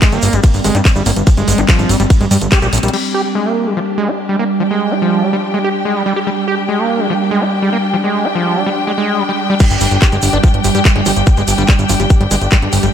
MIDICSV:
0, 0, Header, 1, 6, 480
1, 0, Start_track
1, 0, Tempo, 416667
1, 1462, Time_signature, 4, 2, 24, 8
1, 14900, End_track
2, 0, Start_track
2, 0, Title_t, "String section"
2, 0, Program_c, 0, 48
2, 3381, Note_on_c, 0, 62, 76
2, 3489, Note_on_c, 0, 67, 72
2, 5303, Note_on_c, 0, 79, 84
2, 14900, Note_off_c, 0, 62, 0
2, 14900, Note_off_c, 0, 67, 0
2, 14900, Note_off_c, 0, 79, 0
2, 14900, End_track
3, 0, Start_track
3, 0, Title_t, "Ambient pad"
3, 0, Program_c, 1, 92
3, 0, Note_on_c, 1, 55, 77
3, 0, Note_on_c, 1, 60, 79
3, 3368, Note_off_c, 1, 55, 0
3, 3382, Note_on_c, 1, 55, 76
3, 3382, Note_on_c, 1, 67, 77
3, 3406, Note_off_c, 1, 60, 0
3, 11048, Note_off_c, 1, 55, 0
3, 11048, Note_off_c, 1, 67, 0
3, 11062, Note_on_c, 1, 55, 78
3, 11062, Note_on_c, 1, 67, 77
3, 14900, Note_off_c, 1, 55, 0
3, 14900, Note_off_c, 1, 67, 0
3, 14900, End_track
4, 0, Start_track
4, 0, Title_t, "Acid bass"
4, 0, Program_c, 2, 38
4, 22, Note_on_c, 2, 56, 85
4, 142, Note_on_c, 2, 58, 80
4, 159, Note_off_c, 2, 56, 0
4, 382, Note_on_c, 2, 55, 105
4, 399, Note_off_c, 2, 58, 0
4, 466, Note_off_c, 2, 55, 0
4, 502, Note_on_c, 2, 53, 84
4, 536, Note_off_c, 2, 53, 0
4, 742, Note_on_c, 2, 56, 101
4, 862, Note_on_c, 2, 67, 104
4, 879, Note_off_c, 2, 56, 0
4, 896, Note_off_c, 2, 67, 0
4, 1102, Note_on_c, 2, 55, 81
4, 1186, Note_off_c, 2, 55, 0
4, 1222, Note_on_c, 2, 58, 78
4, 1278, Note_off_c, 2, 58, 0
4, 1462, Note_on_c, 2, 53, 85
4, 1496, Note_off_c, 2, 53, 0
4, 1581, Note_on_c, 2, 56, 82
4, 1821, Note_on_c, 2, 67, 103
4, 1839, Note_off_c, 2, 56, 0
4, 1856, Note_off_c, 2, 67, 0
4, 1942, Note_on_c, 2, 53, 88
4, 2182, Note_on_c, 2, 55, 81
4, 2199, Note_off_c, 2, 53, 0
4, 2266, Note_off_c, 2, 55, 0
4, 2302, Note_on_c, 2, 55, 104
4, 2336, Note_off_c, 2, 55, 0
4, 2542, Note_on_c, 2, 56, 80
4, 2598, Note_off_c, 2, 56, 0
4, 2662, Note_on_c, 2, 55, 80
4, 2696, Note_off_c, 2, 55, 0
4, 2902, Note_on_c, 2, 67, 101
4, 2986, Note_off_c, 2, 67, 0
4, 3022, Note_on_c, 2, 67, 101
4, 3078, Note_off_c, 2, 67, 0
4, 3262, Note_on_c, 2, 55, 76
4, 3347, Note_off_c, 2, 55, 0
4, 3382, Note_on_c, 2, 55, 99
4, 3416, Note_off_c, 2, 55, 0
4, 3622, Note_on_c, 2, 67, 76
4, 3707, Note_off_c, 2, 67, 0
4, 3862, Note_on_c, 2, 56, 83
4, 3982, Note_on_c, 2, 58, 77
4, 3999, Note_off_c, 2, 56, 0
4, 4222, Note_on_c, 2, 55, 100
4, 4239, Note_off_c, 2, 58, 0
4, 4307, Note_off_c, 2, 55, 0
4, 4342, Note_on_c, 2, 53, 84
4, 4376, Note_off_c, 2, 53, 0
4, 4582, Note_on_c, 2, 56, 103
4, 4702, Note_on_c, 2, 67, 102
4, 4719, Note_off_c, 2, 56, 0
4, 4736, Note_off_c, 2, 67, 0
4, 4942, Note_on_c, 2, 55, 74
4, 5027, Note_off_c, 2, 55, 0
4, 5062, Note_on_c, 2, 58, 75
4, 5118, Note_off_c, 2, 58, 0
4, 5302, Note_on_c, 2, 53, 82
4, 5336, Note_off_c, 2, 53, 0
4, 5421, Note_on_c, 2, 56, 77
4, 5662, Note_on_c, 2, 67, 100
4, 5679, Note_off_c, 2, 56, 0
4, 5696, Note_off_c, 2, 67, 0
4, 5782, Note_on_c, 2, 53, 83
4, 6022, Note_on_c, 2, 55, 76
4, 6039, Note_off_c, 2, 53, 0
4, 6107, Note_off_c, 2, 55, 0
4, 6142, Note_on_c, 2, 55, 102
4, 6176, Note_off_c, 2, 55, 0
4, 6382, Note_on_c, 2, 56, 76
4, 6438, Note_off_c, 2, 56, 0
4, 6502, Note_on_c, 2, 67, 75
4, 6558, Note_off_c, 2, 67, 0
4, 6742, Note_on_c, 2, 56, 82
4, 6861, Note_on_c, 2, 55, 101
4, 6879, Note_off_c, 2, 56, 0
4, 6946, Note_off_c, 2, 55, 0
4, 6981, Note_on_c, 2, 55, 100
4, 7066, Note_off_c, 2, 55, 0
4, 7101, Note_on_c, 2, 67, 78
4, 7135, Note_off_c, 2, 67, 0
4, 7221, Note_on_c, 2, 55, 102
4, 7256, Note_off_c, 2, 55, 0
4, 7461, Note_on_c, 2, 67, 79
4, 7546, Note_off_c, 2, 67, 0
4, 7701, Note_on_c, 2, 56, 83
4, 7821, Note_on_c, 2, 58, 75
4, 7839, Note_off_c, 2, 56, 0
4, 8061, Note_on_c, 2, 55, 102
4, 8079, Note_off_c, 2, 58, 0
4, 8146, Note_off_c, 2, 55, 0
4, 8181, Note_on_c, 2, 53, 85
4, 8215, Note_off_c, 2, 53, 0
4, 8421, Note_on_c, 2, 56, 101
4, 8541, Note_on_c, 2, 67, 101
4, 8558, Note_off_c, 2, 56, 0
4, 8575, Note_off_c, 2, 67, 0
4, 8781, Note_on_c, 2, 55, 77
4, 8866, Note_off_c, 2, 55, 0
4, 8902, Note_on_c, 2, 58, 75
4, 8958, Note_off_c, 2, 58, 0
4, 9142, Note_on_c, 2, 53, 84
4, 9176, Note_off_c, 2, 53, 0
4, 9262, Note_on_c, 2, 56, 74
4, 9501, Note_on_c, 2, 67, 105
4, 9518, Note_off_c, 2, 56, 0
4, 9535, Note_off_c, 2, 67, 0
4, 9621, Note_on_c, 2, 53, 86
4, 9861, Note_on_c, 2, 55, 77
4, 9879, Note_off_c, 2, 53, 0
4, 9946, Note_off_c, 2, 55, 0
4, 9981, Note_on_c, 2, 55, 100
4, 10015, Note_off_c, 2, 55, 0
4, 10222, Note_on_c, 2, 56, 77
4, 10278, Note_off_c, 2, 56, 0
4, 10342, Note_on_c, 2, 56, 79
4, 10582, Note_on_c, 2, 55, 83
4, 10599, Note_off_c, 2, 56, 0
4, 10638, Note_off_c, 2, 55, 0
4, 10701, Note_on_c, 2, 55, 73
4, 10735, Note_off_c, 2, 55, 0
4, 10942, Note_on_c, 2, 55, 102
4, 10998, Note_off_c, 2, 55, 0
4, 11061, Note_on_c, 2, 55, 101
4, 11118, Note_off_c, 2, 55, 0
4, 11301, Note_on_c, 2, 55, 77
4, 11335, Note_off_c, 2, 55, 0
4, 11541, Note_on_c, 2, 67, 84
4, 11598, Note_off_c, 2, 67, 0
4, 11661, Note_on_c, 2, 56, 80
4, 11718, Note_off_c, 2, 56, 0
4, 11901, Note_on_c, 2, 62, 78
4, 11958, Note_off_c, 2, 62, 0
4, 12021, Note_on_c, 2, 53, 106
4, 12078, Note_off_c, 2, 53, 0
4, 12262, Note_on_c, 2, 55, 80
4, 12296, Note_off_c, 2, 55, 0
4, 12382, Note_on_c, 2, 67, 76
4, 12438, Note_off_c, 2, 67, 0
4, 12622, Note_on_c, 2, 56, 78
4, 12678, Note_off_c, 2, 56, 0
4, 12742, Note_on_c, 2, 53, 77
4, 12776, Note_off_c, 2, 53, 0
4, 12981, Note_on_c, 2, 55, 86
4, 13016, Note_off_c, 2, 55, 0
4, 13102, Note_on_c, 2, 56, 77
4, 13158, Note_off_c, 2, 56, 0
4, 13342, Note_on_c, 2, 55, 80
4, 13398, Note_off_c, 2, 55, 0
4, 13462, Note_on_c, 2, 55, 105
4, 13518, Note_off_c, 2, 55, 0
4, 13702, Note_on_c, 2, 53, 81
4, 13736, Note_off_c, 2, 53, 0
4, 13822, Note_on_c, 2, 55, 76
4, 13856, Note_off_c, 2, 55, 0
4, 14062, Note_on_c, 2, 55, 77
4, 14096, Note_off_c, 2, 55, 0
4, 14182, Note_on_c, 2, 56, 79
4, 14238, Note_off_c, 2, 56, 0
4, 14422, Note_on_c, 2, 55, 107
4, 14478, Note_off_c, 2, 55, 0
4, 14542, Note_on_c, 2, 55, 79
4, 14576, Note_off_c, 2, 55, 0
4, 14782, Note_on_c, 2, 55, 78
4, 14816, Note_off_c, 2, 55, 0
4, 14900, End_track
5, 0, Start_track
5, 0, Title_t, "Analog synth bass"
5, 0, Program_c, 3, 38
5, 141, Note_on_c, 3, 31, 90
5, 211, Note_off_c, 3, 31, 0
5, 261, Note_on_c, 3, 31, 98
5, 331, Note_off_c, 3, 31, 0
5, 381, Note_on_c, 3, 31, 96
5, 451, Note_off_c, 3, 31, 0
5, 622, Note_on_c, 3, 31, 86
5, 691, Note_off_c, 3, 31, 0
5, 742, Note_on_c, 3, 31, 104
5, 811, Note_off_c, 3, 31, 0
5, 862, Note_on_c, 3, 43, 93
5, 931, Note_off_c, 3, 43, 0
5, 1102, Note_on_c, 3, 31, 90
5, 1171, Note_off_c, 3, 31, 0
5, 1222, Note_on_c, 3, 31, 100
5, 1291, Note_off_c, 3, 31, 0
5, 1342, Note_on_c, 3, 31, 91
5, 1411, Note_off_c, 3, 31, 0
5, 1582, Note_on_c, 3, 31, 88
5, 1651, Note_off_c, 3, 31, 0
5, 1702, Note_on_c, 3, 31, 101
5, 1771, Note_off_c, 3, 31, 0
5, 1822, Note_on_c, 3, 31, 95
5, 1891, Note_off_c, 3, 31, 0
5, 2062, Note_on_c, 3, 31, 89
5, 2131, Note_off_c, 3, 31, 0
5, 2182, Note_on_c, 3, 31, 98
5, 2251, Note_off_c, 3, 31, 0
5, 2302, Note_on_c, 3, 31, 97
5, 2371, Note_off_c, 3, 31, 0
5, 2542, Note_on_c, 3, 31, 86
5, 2611, Note_off_c, 3, 31, 0
5, 2661, Note_on_c, 3, 43, 105
5, 2731, Note_off_c, 3, 43, 0
5, 2782, Note_on_c, 3, 31, 92
5, 2851, Note_off_c, 3, 31, 0
5, 3021, Note_on_c, 3, 34, 89
5, 3091, Note_off_c, 3, 34, 0
5, 3142, Note_on_c, 3, 34, 103
5, 3211, Note_off_c, 3, 34, 0
5, 3262, Note_on_c, 3, 34, 95
5, 3331, Note_off_c, 3, 34, 0
5, 11182, Note_on_c, 3, 31, 86
5, 11251, Note_off_c, 3, 31, 0
5, 11302, Note_on_c, 3, 31, 102
5, 11371, Note_off_c, 3, 31, 0
5, 11422, Note_on_c, 3, 31, 95
5, 11491, Note_off_c, 3, 31, 0
5, 11662, Note_on_c, 3, 31, 86
5, 11731, Note_off_c, 3, 31, 0
5, 11782, Note_on_c, 3, 31, 98
5, 11851, Note_off_c, 3, 31, 0
5, 11902, Note_on_c, 3, 31, 94
5, 11971, Note_off_c, 3, 31, 0
5, 12142, Note_on_c, 3, 31, 84
5, 12211, Note_off_c, 3, 31, 0
5, 12262, Note_on_c, 3, 31, 106
5, 12331, Note_off_c, 3, 31, 0
5, 12382, Note_on_c, 3, 43, 95
5, 12451, Note_off_c, 3, 43, 0
5, 12622, Note_on_c, 3, 31, 90
5, 12691, Note_off_c, 3, 31, 0
5, 12742, Note_on_c, 3, 31, 98
5, 12811, Note_off_c, 3, 31, 0
5, 12862, Note_on_c, 3, 31, 91
5, 12931, Note_off_c, 3, 31, 0
5, 13102, Note_on_c, 3, 31, 86
5, 13171, Note_off_c, 3, 31, 0
5, 13222, Note_on_c, 3, 31, 101
5, 13291, Note_off_c, 3, 31, 0
5, 13342, Note_on_c, 3, 31, 95
5, 13411, Note_off_c, 3, 31, 0
5, 13582, Note_on_c, 3, 31, 89
5, 13651, Note_off_c, 3, 31, 0
5, 13702, Note_on_c, 3, 31, 99
5, 13771, Note_off_c, 3, 31, 0
5, 13822, Note_on_c, 3, 31, 94
5, 13891, Note_off_c, 3, 31, 0
5, 14062, Note_on_c, 3, 31, 87
5, 14131, Note_off_c, 3, 31, 0
5, 14182, Note_on_c, 3, 31, 104
5, 14251, Note_off_c, 3, 31, 0
5, 14302, Note_on_c, 3, 31, 94
5, 14371, Note_off_c, 3, 31, 0
5, 14542, Note_on_c, 3, 31, 87
5, 14611, Note_off_c, 3, 31, 0
5, 14662, Note_on_c, 3, 31, 100
5, 14731, Note_off_c, 3, 31, 0
5, 14782, Note_on_c, 3, 31, 91
5, 14851, Note_off_c, 3, 31, 0
5, 14900, End_track
6, 0, Start_track
6, 0, Title_t, "Drums"
6, 22, Note_on_c, 9, 36, 117
6, 22, Note_on_c, 9, 39, 115
6, 22, Note_on_c, 9, 42, 80
6, 22, Note_on_c, 9, 51, 72
6, 23, Note_on_c, 9, 82, 49
6, 137, Note_off_c, 9, 36, 0
6, 137, Note_off_c, 9, 39, 0
6, 137, Note_off_c, 9, 42, 0
6, 137, Note_off_c, 9, 51, 0
6, 137, Note_off_c, 9, 82, 0
6, 137, Note_on_c, 9, 82, 32
6, 142, Note_on_c, 9, 42, 38
6, 252, Note_off_c, 9, 82, 0
6, 252, Note_on_c, 9, 82, 93
6, 257, Note_off_c, 9, 42, 0
6, 262, Note_on_c, 9, 46, 105
6, 367, Note_off_c, 9, 82, 0
6, 377, Note_off_c, 9, 46, 0
6, 377, Note_on_c, 9, 82, 40
6, 382, Note_on_c, 9, 42, 54
6, 492, Note_off_c, 9, 82, 0
6, 496, Note_on_c, 9, 82, 50
6, 497, Note_off_c, 9, 42, 0
6, 502, Note_on_c, 9, 36, 114
6, 502, Note_on_c, 9, 42, 85
6, 502, Note_on_c, 9, 51, 75
6, 611, Note_off_c, 9, 82, 0
6, 617, Note_off_c, 9, 36, 0
6, 617, Note_off_c, 9, 42, 0
6, 617, Note_off_c, 9, 51, 0
6, 622, Note_on_c, 9, 46, 57
6, 623, Note_on_c, 9, 82, 38
6, 737, Note_off_c, 9, 46, 0
6, 738, Note_off_c, 9, 82, 0
6, 742, Note_on_c, 9, 46, 98
6, 742, Note_on_c, 9, 82, 81
6, 857, Note_off_c, 9, 46, 0
6, 857, Note_off_c, 9, 82, 0
6, 862, Note_on_c, 9, 42, 56
6, 866, Note_on_c, 9, 82, 42
6, 977, Note_off_c, 9, 42, 0
6, 981, Note_off_c, 9, 82, 0
6, 982, Note_on_c, 9, 36, 117
6, 982, Note_on_c, 9, 39, 119
6, 982, Note_on_c, 9, 42, 84
6, 982, Note_on_c, 9, 51, 73
6, 982, Note_on_c, 9, 82, 54
6, 1097, Note_off_c, 9, 36, 0
6, 1097, Note_off_c, 9, 39, 0
6, 1097, Note_off_c, 9, 42, 0
6, 1097, Note_off_c, 9, 51, 0
6, 1097, Note_off_c, 9, 82, 0
6, 1099, Note_on_c, 9, 82, 36
6, 1214, Note_off_c, 9, 82, 0
6, 1219, Note_on_c, 9, 82, 86
6, 1221, Note_on_c, 9, 46, 100
6, 1334, Note_off_c, 9, 82, 0
6, 1337, Note_off_c, 9, 46, 0
6, 1342, Note_on_c, 9, 42, 56
6, 1342, Note_on_c, 9, 82, 37
6, 1457, Note_off_c, 9, 42, 0
6, 1458, Note_off_c, 9, 82, 0
6, 1462, Note_on_c, 9, 36, 120
6, 1462, Note_on_c, 9, 42, 89
6, 1462, Note_on_c, 9, 51, 73
6, 1462, Note_on_c, 9, 82, 56
6, 1577, Note_off_c, 9, 36, 0
6, 1577, Note_off_c, 9, 42, 0
6, 1577, Note_off_c, 9, 51, 0
6, 1578, Note_off_c, 9, 82, 0
6, 1582, Note_on_c, 9, 42, 38
6, 1585, Note_on_c, 9, 82, 38
6, 1697, Note_off_c, 9, 42, 0
6, 1700, Note_off_c, 9, 82, 0
6, 1702, Note_on_c, 9, 46, 107
6, 1708, Note_on_c, 9, 82, 83
6, 1817, Note_off_c, 9, 46, 0
6, 1822, Note_on_c, 9, 42, 55
6, 1823, Note_off_c, 9, 82, 0
6, 1826, Note_on_c, 9, 82, 41
6, 1937, Note_off_c, 9, 42, 0
6, 1941, Note_off_c, 9, 82, 0
6, 1942, Note_on_c, 9, 36, 117
6, 1942, Note_on_c, 9, 39, 121
6, 1942, Note_on_c, 9, 42, 83
6, 1942, Note_on_c, 9, 51, 72
6, 1944, Note_on_c, 9, 82, 48
6, 2057, Note_off_c, 9, 36, 0
6, 2057, Note_off_c, 9, 39, 0
6, 2057, Note_off_c, 9, 42, 0
6, 2057, Note_off_c, 9, 51, 0
6, 2059, Note_off_c, 9, 82, 0
6, 2062, Note_on_c, 9, 42, 40
6, 2063, Note_on_c, 9, 82, 35
6, 2177, Note_off_c, 9, 42, 0
6, 2178, Note_off_c, 9, 82, 0
6, 2182, Note_on_c, 9, 46, 101
6, 2191, Note_on_c, 9, 82, 87
6, 2297, Note_off_c, 9, 46, 0
6, 2301, Note_off_c, 9, 82, 0
6, 2301, Note_on_c, 9, 82, 37
6, 2302, Note_on_c, 9, 42, 58
6, 2416, Note_off_c, 9, 82, 0
6, 2417, Note_off_c, 9, 42, 0
6, 2422, Note_on_c, 9, 36, 120
6, 2422, Note_on_c, 9, 42, 86
6, 2422, Note_on_c, 9, 51, 71
6, 2431, Note_on_c, 9, 82, 51
6, 2537, Note_off_c, 9, 36, 0
6, 2537, Note_off_c, 9, 42, 0
6, 2537, Note_off_c, 9, 51, 0
6, 2541, Note_on_c, 9, 42, 39
6, 2546, Note_off_c, 9, 82, 0
6, 2553, Note_on_c, 9, 82, 33
6, 2657, Note_off_c, 9, 42, 0
6, 2661, Note_on_c, 9, 46, 105
6, 2664, Note_off_c, 9, 82, 0
6, 2664, Note_on_c, 9, 82, 95
6, 2776, Note_off_c, 9, 46, 0
6, 2779, Note_off_c, 9, 82, 0
6, 2780, Note_on_c, 9, 82, 42
6, 2781, Note_on_c, 9, 42, 56
6, 2895, Note_off_c, 9, 82, 0
6, 2896, Note_on_c, 9, 82, 46
6, 2897, Note_off_c, 9, 42, 0
6, 2901, Note_on_c, 9, 39, 126
6, 2901, Note_on_c, 9, 42, 87
6, 2901, Note_on_c, 9, 51, 69
6, 2902, Note_on_c, 9, 36, 115
6, 3012, Note_off_c, 9, 82, 0
6, 3017, Note_off_c, 9, 36, 0
6, 3017, Note_off_c, 9, 39, 0
6, 3017, Note_off_c, 9, 42, 0
6, 3017, Note_off_c, 9, 51, 0
6, 3021, Note_on_c, 9, 42, 39
6, 3022, Note_on_c, 9, 82, 34
6, 3137, Note_off_c, 9, 42, 0
6, 3137, Note_off_c, 9, 82, 0
6, 3141, Note_on_c, 9, 42, 56
6, 3141, Note_on_c, 9, 46, 106
6, 3151, Note_on_c, 9, 82, 98
6, 3201, Note_off_c, 9, 42, 0
6, 3201, Note_on_c, 9, 42, 67
6, 3256, Note_off_c, 9, 46, 0
6, 3261, Note_off_c, 9, 42, 0
6, 3261, Note_on_c, 9, 42, 77
6, 3263, Note_off_c, 9, 82, 0
6, 3263, Note_on_c, 9, 82, 43
6, 3321, Note_off_c, 9, 42, 0
6, 3321, Note_on_c, 9, 42, 85
6, 3378, Note_off_c, 9, 82, 0
6, 3381, Note_on_c, 9, 49, 84
6, 3436, Note_off_c, 9, 42, 0
6, 3496, Note_off_c, 9, 49, 0
6, 11056, Note_on_c, 9, 82, 56
6, 11061, Note_on_c, 9, 42, 71
6, 11061, Note_on_c, 9, 57, 105
6, 11062, Note_on_c, 9, 36, 117
6, 11171, Note_off_c, 9, 82, 0
6, 11177, Note_off_c, 9, 36, 0
6, 11177, Note_off_c, 9, 42, 0
6, 11177, Note_off_c, 9, 57, 0
6, 11178, Note_on_c, 9, 82, 37
6, 11181, Note_on_c, 9, 42, 41
6, 11292, Note_off_c, 9, 82, 0
6, 11292, Note_on_c, 9, 82, 98
6, 11296, Note_off_c, 9, 42, 0
6, 11301, Note_on_c, 9, 46, 107
6, 11407, Note_off_c, 9, 82, 0
6, 11417, Note_off_c, 9, 46, 0
6, 11420, Note_on_c, 9, 82, 37
6, 11421, Note_on_c, 9, 42, 41
6, 11536, Note_off_c, 9, 82, 0
6, 11537, Note_off_c, 9, 42, 0
6, 11542, Note_on_c, 9, 36, 124
6, 11542, Note_on_c, 9, 39, 119
6, 11542, Note_on_c, 9, 42, 67
6, 11545, Note_on_c, 9, 82, 52
6, 11657, Note_off_c, 9, 36, 0
6, 11657, Note_off_c, 9, 39, 0
6, 11657, Note_off_c, 9, 42, 0
6, 11660, Note_off_c, 9, 82, 0
6, 11660, Note_on_c, 9, 82, 36
6, 11662, Note_on_c, 9, 42, 42
6, 11773, Note_off_c, 9, 82, 0
6, 11773, Note_on_c, 9, 82, 97
6, 11777, Note_off_c, 9, 42, 0
6, 11782, Note_on_c, 9, 46, 106
6, 11888, Note_off_c, 9, 82, 0
6, 11897, Note_off_c, 9, 46, 0
6, 11900, Note_on_c, 9, 82, 35
6, 11902, Note_on_c, 9, 42, 42
6, 12015, Note_off_c, 9, 82, 0
6, 12017, Note_off_c, 9, 42, 0
6, 12022, Note_on_c, 9, 36, 122
6, 12022, Note_on_c, 9, 42, 71
6, 12023, Note_on_c, 9, 82, 50
6, 12137, Note_off_c, 9, 36, 0
6, 12137, Note_off_c, 9, 42, 0
6, 12138, Note_off_c, 9, 82, 0
6, 12142, Note_on_c, 9, 42, 40
6, 12257, Note_off_c, 9, 42, 0
6, 12260, Note_on_c, 9, 82, 86
6, 12261, Note_on_c, 9, 46, 107
6, 12376, Note_off_c, 9, 82, 0
6, 12377, Note_off_c, 9, 46, 0
6, 12382, Note_on_c, 9, 42, 43
6, 12384, Note_on_c, 9, 82, 38
6, 12497, Note_off_c, 9, 42, 0
6, 12499, Note_off_c, 9, 82, 0
6, 12502, Note_on_c, 9, 36, 122
6, 12502, Note_on_c, 9, 39, 124
6, 12502, Note_on_c, 9, 42, 71
6, 12502, Note_on_c, 9, 82, 55
6, 12617, Note_off_c, 9, 36, 0
6, 12617, Note_off_c, 9, 39, 0
6, 12617, Note_off_c, 9, 42, 0
6, 12617, Note_off_c, 9, 82, 0
6, 12621, Note_on_c, 9, 42, 42
6, 12737, Note_off_c, 9, 42, 0
6, 12738, Note_on_c, 9, 82, 93
6, 12741, Note_on_c, 9, 46, 105
6, 12853, Note_off_c, 9, 82, 0
6, 12857, Note_off_c, 9, 46, 0
6, 12857, Note_on_c, 9, 82, 42
6, 12862, Note_on_c, 9, 42, 43
6, 12972, Note_off_c, 9, 82, 0
6, 12977, Note_off_c, 9, 42, 0
6, 12977, Note_on_c, 9, 82, 54
6, 12982, Note_on_c, 9, 36, 127
6, 12982, Note_on_c, 9, 42, 70
6, 13092, Note_off_c, 9, 82, 0
6, 13097, Note_off_c, 9, 36, 0
6, 13097, Note_off_c, 9, 42, 0
6, 13098, Note_on_c, 9, 82, 40
6, 13102, Note_on_c, 9, 42, 39
6, 13213, Note_off_c, 9, 82, 0
6, 13217, Note_off_c, 9, 42, 0
6, 13220, Note_on_c, 9, 82, 101
6, 13222, Note_on_c, 9, 46, 114
6, 13335, Note_off_c, 9, 82, 0
6, 13337, Note_off_c, 9, 46, 0
6, 13341, Note_on_c, 9, 82, 41
6, 13342, Note_on_c, 9, 42, 40
6, 13454, Note_off_c, 9, 82, 0
6, 13454, Note_on_c, 9, 82, 53
6, 13457, Note_off_c, 9, 42, 0
6, 13462, Note_on_c, 9, 36, 124
6, 13462, Note_on_c, 9, 39, 123
6, 13462, Note_on_c, 9, 42, 66
6, 13569, Note_off_c, 9, 82, 0
6, 13577, Note_off_c, 9, 36, 0
6, 13577, Note_off_c, 9, 39, 0
6, 13577, Note_off_c, 9, 42, 0
6, 13578, Note_on_c, 9, 82, 36
6, 13582, Note_on_c, 9, 42, 41
6, 13693, Note_off_c, 9, 82, 0
6, 13697, Note_off_c, 9, 42, 0
6, 13698, Note_on_c, 9, 82, 90
6, 13701, Note_on_c, 9, 46, 112
6, 13814, Note_off_c, 9, 82, 0
6, 13814, Note_on_c, 9, 82, 40
6, 13817, Note_off_c, 9, 46, 0
6, 13822, Note_on_c, 9, 42, 39
6, 13930, Note_off_c, 9, 82, 0
6, 13937, Note_off_c, 9, 42, 0
6, 13938, Note_on_c, 9, 82, 55
6, 13942, Note_on_c, 9, 36, 126
6, 13942, Note_on_c, 9, 42, 70
6, 14053, Note_off_c, 9, 82, 0
6, 14057, Note_off_c, 9, 36, 0
6, 14057, Note_off_c, 9, 42, 0
6, 14062, Note_on_c, 9, 42, 39
6, 14177, Note_off_c, 9, 42, 0
6, 14181, Note_on_c, 9, 46, 112
6, 14182, Note_on_c, 9, 82, 99
6, 14297, Note_off_c, 9, 46, 0
6, 14297, Note_off_c, 9, 82, 0
6, 14301, Note_on_c, 9, 82, 39
6, 14302, Note_on_c, 9, 42, 41
6, 14412, Note_off_c, 9, 82, 0
6, 14412, Note_on_c, 9, 82, 51
6, 14417, Note_off_c, 9, 42, 0
6, 14421, Note_on_c, 9, 39, 127
6, 14421, Note_on_c, 9, 42, 67
6, 14422, Note_on_c, 9, 36, 124
6, 14528, Note_off_c, 9, 82, 0
6, 14537, Note_off_c, 9, 36, 0
6, 14537, Note_off_c, 9, 39, 0
6, 14537, Note_off_c, 9, 42, 0
6, 14541, Note_on_c, 9, 42, 41
6, 14657, Note_off_c, 9, 42, 0
6, 14657, Note_on_c, 9, 82, 90
6, 14661, Note_on_c, 9, 46, 110
6, 14772, Note_off_c, 9, 82, 0
6, 14773, Note_on_c, 9, 82, 45
6, 14777, Note_off_c, 9, 46, 0
6, 14781, Note_on_c, 9, 42, 41
6, 14888, Note_off_c, 9, 82, 0
6, 14896, Note_off_c, 9, 42, 0
6, 14900, End_track
0, 0, End_of_file